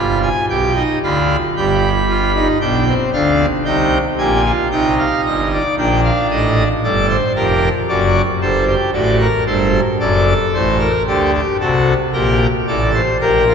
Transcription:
0.00 0.29 G1 medium
0.00 0.29 G2 medium
0.00 0.29 F4 medium
0.00 0.19 B5 medium
0.23 0.45 G#5 medium
0.49 0.82 B1 medium
0.49 0.82 B2 medium
0.49 0.72 G4 medium
0.49 0.82 G5 medium
0.76 0.99 D#4 medium
1.03 1.36 D2 medium
1.03 1.36 D3 medium
1.03 1.36 F4 medium
1.03 1.36 B5 medium
1.56 2.47 G1 medium
1.56 2.47 G2 medium
1.56 1.89 G4 medium
1.56 2.47 B5 medium
2.09 2.32 F4 medium
2.36 2.58 D#4 medium
2.61 2.93 B1 medium
2.61 2.94 B2 medium
2.61 2.84 D4 medium
2.61 2.94 G5 medium
2.87 3.10 C4 medium
3.13 3.46 D2 medium
3.13 3.46 D3 medium
3.13 3.46 D4 medium
3.13 3.46 F5 medium
3.65 3.98 C2 medium
3.65 3.98 C3 medium
3.65 3.98 D#4 medium
3.65 3.98 G5 medium
4.18 4.51 A#1 medium
4.18 4.51 A#2 medium
4.18 4.41 G4 medium
4.18 4.51 G#5 medium
4.45 4.68 F4 medium
4.71 5.05 C2 medium
4.71 5.04 C3 medium
4.71 5.63 D#4 medium
4.71 4.94 G5 medium
4.98 5.21 F5 medium
5.25 5.58 G1 medium
5.25 5.58 G2 medium
5.25 5.48 D#5 medium
5.53 5.75 D5 medium
5.78 6.10 A#1 medium
5.78 6.11 A#2 medium
5.78 6.69 D4 medium
5.78 6.01 G5 medium
6.04 6.27 F5 medium
6.30 6.63 A1 medium
6.30 6.63 A2 medium
6.30 6.63 D#5 medium
6.83 7.16 G1 medium
6.83 7.16 G2 medium
6.83 7.16 A4 medium
6.83 7.06 D5 medium
7.09 7.32 C5 medium
7.36 7.69 F1 medium
7.36 7.69 F2 medium
7.36 7.69 G4 medium
7.36 7.69 A#4 medium
7.88 8.22 F#1 medium
7.88 8.22 F#2 medium
7.88 8.21 F#4 medium
7.88 8.21 D5 medium
8.42 8.75 G1 medium
8.42 8.75 G2 medium
8.42 8.64 A4 medium
8.42 8.75 C5 medium
8.67 8.90 G4 medium
8.93 9.27 A1 medium
8.93 9.27 A2 medium
8.93 9.27 F#4 medium
8.93 9.17 D5 medium
9.20 9.44 A#4 medium
9.46 9.80 G1 medium
9.46 9.80 G2 medium
9.46 9.80 A4 medium
9.46 9.80 C5 medium
10.00 10.34 F#1 medium
10.00 10.33 F#2 medium
10.00 10.92 A4 medium
10.00 10.33 D5 medium
10.54 10.87 A1 medium
10.54 10.87 A2 medium
10.54 10.77 C5 medium
10.79 11.03 A#4 medium
11.07 11.40 D2 medium
11.07 11.40 D3 medium
11.07 11.32 G4 medium
11.07 11.30 A4 medium
11.34 11.57 G4 medium
11.60 11.94 C2 medium
11.60 11.94 C3 medium
11.60 11.94 F#4 medium
11.60 11.94 A4 medium
12.13 12.47 A#1 medium
12.13 12.47 A#2 medium
12.13 12.47 G4 medium
12.13 12.46 A#4 medium
12.67 13.01 A1 medium
12.67 13.01 A2 medium
12.67 13.01 A4 medium
12.67 12.90 D5 medium
12.94 13.17 C5 medium
13.21 13.54 A#1 medium
13.21 13.54 A#2 medium
13.21 13.44 G4 medium
13.21 13.54 A#4 medium
13.48 13.54 F4 medium

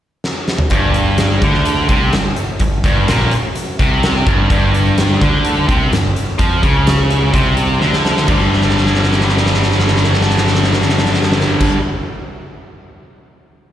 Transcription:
0.24 snare medium
0.48 snare medium
0.58 mid tom medium
0.70 1.38 G1 medium
0.70 1.42 G2 loud
0.70 kick medium
0.70 closed hi-hat medium
0.94 closed hi-hat medium
1.18 snare loud
1.18 closed hi-hat medium
1.42 1.86 D2 medium
1.42 1.89 D3 loud
1.42 kick loud
1.42 closed hi-hat medium
1.54 snare soft
1.65 closed hi-hat medium
1.89 2.11 C2 medium
1.89 2.12 C3 medium
1.89 kick medium
1.89 closed hi-hat medium
2.13 2.35 G1 medium
2.13 2.33 G2 medium
2.13 snare loud
2.13 closed hi-hat medium
2.36 closed hi-hat medium
2.60 2.83 G1 medium
2.60 2.80 G2 medium
2.60 kick medium
2.60 closed hi-hat medium
2.84 3.06 G1 medium
2.84 3.08 G2 medium
2.84 kick loud
2.84 closed hi-hat medium
3.08 3.30 A#1 medium
3.08 3.31 A#2 loud
3.08 snare loud
3.08 closed hi-hat loud
3.31 closed hi-hat medium
3.55 closed hi-hat medium
3.79 4.23 C2 medium
3.79 4.26 C3 loud
3.79 kick loud
3.79 closed hi-hat medium
4.03 snare medium
4.03 closed hi-hat medium
4.27 4.49 G1 medium
4.27 4.50 G2 loud
4.27 kick loud
4.27 closed hi-hat medium
4.50 5.17 G1 medium
4.50 5.21 G2 loud
4.50 kick loud
4.50 closed hi-hat medium
4.74 closed hi-hat medium
4.98 snare loud
4.98 closed hi-hat medium
5.21 5.65 D2 loud
5.21 5.68 D3 loud
5.21 kick loud
5.21 closed hi-hat medium
5.45 closed hi-hat medium
5.68 5.90 C2 medium
5.68 5.91 C3 loud
5.68 kick loud
5.68 closed hi-hat medium
5.92 6.14 G1 medium
5.92 6.11 G2 medium
5.92 snare medium
5.92 closed hi-hat medium
6.16 closed hi-hat medium
6.39 6.61 F2 loud
6.39 6.62 F3 loud
6.39 kick loud
6.39 closed hi-hat medium
6.63 7.30 C#2 medium
6.63 7.33 C#3 medium
6.63 kick loud
6.63 closed hi-hat medium
6.87 snare loud
6.87 closed hi-hat loud
7.11 closed hi-hat medium
7.34 7.78 C2 medium
7.34 7.80 C3 medium
7.34 kick loud
7.34 closed hi-hat medium
7.57 closed hi-hat medium
7.81 8.25 D2 medium
7.81 8.27 D3 medium
7.81 snare soft
7.93 snare medium
8.05 snare medium
8.17 snare medium
8.26 11.67 G1 medium
8.26 11.76 G2 medium
8.26 11.78 D3 loud
8.26 11.80 G3 loud
8.26 kick medium
8.26 crash medium
8.53 snare soft
8.62 snare soft
8.70 snare soft
8.78 snare soft
8.86 snare medium
8.95 snare soft
9.03 snare medium
9.12 snare medium
9.21 snare medium
9.29 snare medium
9.37 snare medium
9.46 snare medium
9.54 snare medium
9.63 snare medium
9.71 snare medium
9.79 snare medium
9.88 snare medium
9.96 snare medium
10.04 snare medium
10.13 snare medium
10.21 snare medium
10.30 snare medium
10.37 snare medium
10.47 snare medium
10.55 snare medium
10.64 snare medium
10.73 snare medium
10.82 snare medium
10.89 snare medium
10.98 snare medium
11.06 snare medium
11.14 snare medium
11.23 snare medium
11.32 snare loud
11.41 snare medium
11.60 kick medium
11.60 crash medium

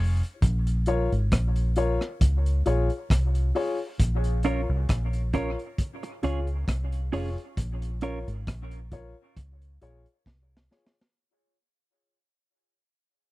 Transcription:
0.00 0.20 F1 medium
0.00 0.19 F4 loud
0.00 0.20 G#4 medium
0.00 0.20 C#5 loud
0.23 closed hi-hat soft
0.42 1.08 A#1 loud
0.42 kick loud
0.42 closed hi-hat medium
0.67 closed hi-hat medium
0.86 1.09 F4 medium
0.86 1.09 A#4 medium
0.86 1.09 C#5 loud
0.86 closed hi-hat medium
1.12 1.30 G#1 loud
1.12 closed hi-hat soft
1.32 1.97 A#1 loud
1.32 kick loud
1.32 cross-stick loud
1.32 closed hi-hat medium
1.56 closed hi-hat soft
1.76 1.98 F4 loud
1.76 1.98 A#4 medium
1.76 1.99 C#5 loud
1.76 closed hi-hat medium
2.01 cross-stick medium
2.21 2.62 C#2 loud
2.21 kick loud
2.21 closed hi-hat medium
2.46 closed hi-hat medium
2.66 2.88 A#1 medium
2.66 2.87 F4 medium
2.66 2.88 G#4 medium
2.66 2.88 C#5 loud
2.66 closed hi-hat medium
2.90 closed hi-hat soft
3.10 3.51 C2 medium
3.10 kick loud
3.10 cross-stick loud
3.10 closed hi-hat loud
3.35 closed hi-hat soft
3.55 3.77 F4 medium
3.55 3.77 G#4 medium
3.55 3.77 C#5 loud
3.55 open hi-hat medium
4.00 4.65 A#1 medium
4.00 kick loud
4.00 closed hi-hat medium
4.24 closed hi-hat medium
4.43 4.60 C#4 medium
4.43 4.66 F4 medium
4.43 4.60 F4 medium
4.43 4.66 A#4 medium
4.43 4.61 A#4 medium
4.43 4.67 C#5 medium
4.43 4.61 C#5 medium
4.43 closed hi-hat medium
4.69 4.87 C2 medium
4.89 5.55 A#1 medium
4.89 kick loud
4.89 cross-stick loud
4.89 closed hi-hat medium
5.13 closed hi-hat soft
5.33 5.49 C#4 medium
5.33 5.55 F4 medium
5.33 5.50 F4 medium
5.33 5.56 A#4 medium
5.33 5.50 A#4 medium
5.33 5.50 C#5 medium
5.33 5.56 C#5 loud
5.33 kick medium
5.33 closed hi-hat medium
5.59 closed hi-hat soft
5.78 kick loud
5.78 closed hi-hat medium
6.03 muted clean electric guitar stroke soft
6.03 closed hi-hat soft
6.23 6.64 C#2 medium
6.23 6.39 C#4 medium
6.23 6.45 F4 medium
6.23 6.39 F4 medium
6.23 6.45 G#4 medium
6.23 6.39 G#4 medium
6.23 6.45 C#5 loud
6.23 6.40 C#5 medium
6.23 closed hi-hat medium
6.47 closed hi-hat soft
6.68 7.09 C2 medium
6.68 kick loud
6.68 cross-stick loud
6.68 closed hi-hat medium
6.92 closed hi-hat medium
7.12 7.35 F1 medium
7.12 7.28 C#4 medium
7.12 7.34 F4 medium
7.12 7.29 F4 medium
7.12 7.34 G#4 medium
7.12 7.29 G#4 loud
7.12 7.35 C#5 medium
7.12 7.29 C#5 loud
7.12 open hi-hat medium
7.38 closed hi-hat soft
7.57 8.23 A#1 loud
7.57 kick loud
7.57 closed hi-hat medium
7.82 closed hi-hat medium
8.01 8.18 C#4 medium
8.01 8.24 F4 medium
8.01 8.18 F4 medium
8.01 8.24 A#4 medium
8.01 8.18 A#4 medium
8.01 8.24 C#5 medium
8.01 8.18 C#5 medium
8.01 closed hi-hat medium
8.28 8.45 G#1 medium
8.28 closed hi-hat soft
8.47 9.13 A#1 medium
8.47 kick loud
8.47 cross-stick loud
8.47 closed hi-hat medium
8.71 closed hi-hat soft
8.91 9.13 F4 medium
8.91 9.14 A#4 medium
8.91 9.14 C#5 medium
8.91 kick medium
8.91 closed hi-hat medium
9.37 9.77 C#2 medium
9.37 kick loud
9.37 closed hi-hat medium
9.62 closed hi-hat soft
9.81 10.04 A#1 medium
9.81 10.03 F4 medium
9.81 10.03 G#4 medium
9.81 10.04 C#5 loud
9.81 closed hi-hat medium
10.06 closed hi-hat soft
10.26 10.67 C2 medium
10.26 kick loud
10.26 snare medium
10.57 snare medium
10.71 10.93 F4 medium
10.71 10.93 G#4 medium
10.71 10.93 C#5 medium
10.71 snare medium
10.86 snare medium
11.01 snare medium

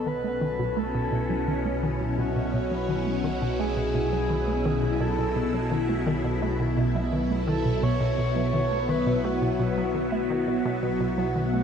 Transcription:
0.00 10.62 B1 medium
0.00 11.63 B2 medium
0.00 11.63 F#3 medium
0.00 0.26 F#4 medium
0.00 1.00 G#5 medium
0.07 0.17 D#3 medium
0.07 6.87 C#4 medium
0.07 0.80 B4 loud
0.24 0.40 A3 medium
0.41 0.58 D#3 loud
0.41 11.63 E4 medium
0.59 0.70 B2 loud
0.77 0.93 A3 loud
0.77 1.84 A4 medium
0.95 1.06 B2 medium
1.12 1.29 B2 medium
1.30 1.37 F#3 medium
1.48 1.59 D#3 medium
1.66 1.82 A3 medium
1.83 1.99 D#3 loud
2.01 2.12 B2 medium
2.18 2.35 B2 loud
2.18 2.52 F#4 medium
2.36 2.47 B2 medium
2.54 2.70 B2 medium
2.54 3.62 F#4 loud
2.71 2.82 F#3 medium
2.89 3.00 D#3 medium
3.06 3.23 A3 medium
3.24 3.40 D#3 loud
3.42 3.53 B2 medium
3.59 3.76 A3 loud
3.59 5.03 G#4 loud
3.77 3.88 B2 medium
3.95 4.11 B2 medium
4.12 4.19 F#3 medium
4.30 4.41 D#3 medium
4.48 4.64 A3 medium
4.66 4.82 D#3 loud
4.83 4.94 B2 medium
5.01 5.17 B2 loud
5.01 5.72 A4 loud
5.19 5.29 B2 medium
5.36 5.52 B2 medium
5.54 5.65 F#3 medium
5.71 5.82 D#3 medium
5.89 6.05 A3 medium
6.07 6.23 D#3 loud
6.24 6.35 B2 loud
6.42 6.58 A3 loud
6.60 6.71 B2 medium
6.66 11.63 B3 medium
6.77 6.94 B2 medium
6.95 7.01 F#3 medium
7.13 7.23 D#3 medium
7.30 7.47 A3 medium
7.48 7.64 D#3 loud
7.48 7.85 A4 loud
7.65 7.76 B2 medium
7.83 7.99 B2 loud
7.83 8.53 C#5 loud
8.01 8.11 B2 medium
8.18 8.35 B2 medium
8.36 8.47 F#3 medium
8.54 8.65 D#3 medium
8.54 8.91 C#5 loud
8.71 8.88 A3 medium
8.89 9.05 D#3 loud
8.89 9.26 B4 loud
9.07 9.17 B2 medium
9.24 9.40 A3 loud
9.24 11.63 F#4 loud
9.42 9.53 B2 medium
9.60 9.76 B2 medium
9.78 9.84 F#3 medium
9.95 10.06 D#3 medium
10.12 10.29 A3 medium
10.30 10.46 D#3 loud
10.48 10.59 B2 medium
10.65 11.63 B1 medium
10.65 10.82 B2 loud
10.83 10.94 B2 medium
11.01 11.17 B2 medium
11.18 11.29 F#3 medium
11.36 11.47 D#3 medium
11.53 11.63 A3 medium

